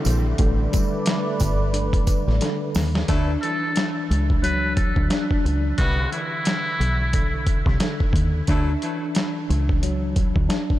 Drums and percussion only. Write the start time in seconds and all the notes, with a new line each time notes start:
0.05 closed hi-hat, tambourine
0.38 kick, closed hi-hat
0.73 kick, closed hi-hat, tambourine
1.06 snare, closed hi-hat
1.40 kick, closed hi-hat, tambourine
1.74 closed hi-hat
1.93 kick, closed hi-hat
2.07 kick, closed hi-hat, tambourine
2.28 snare
2.41 snare, closed hi-hat
2.75 snare, open hi-hat, tambourine
2.95 snare
3.08 kick, closed hi-hat
3.43 closed hi-hat
3.76 snare, closed hi-hat
4.11 closed hi-hat
4.30 kick
4.44 closed hi-hat
4.77 kick, closed hi-hat
4.96 kick
5.10 snare, closed hi-hat
5.31 kick
5.46 closed hi-hat
5.78 kick, closed hi-hat
6.12 closed hi-hat
6.45 snare, closed hi-hat
6.81 closed hi-hat
7.13 kick, closed hi-hat
7.47 kick, closed hi-hat
7.66 kick, snare
7.80 snare, closed hi-hat
8.00 kick
8.13 kick, closed hi-hat
8.47 kick, closed hi-hat
8.82 closed hi-hat
9.15 snare, closed hi-hat
9.50 closed hi-hat
9.69 kick
9.83 closed hi-hat
10.16 kick, closed hi-hat
10.36 kick
10.50 snare, closed hi-hat
10.70 kick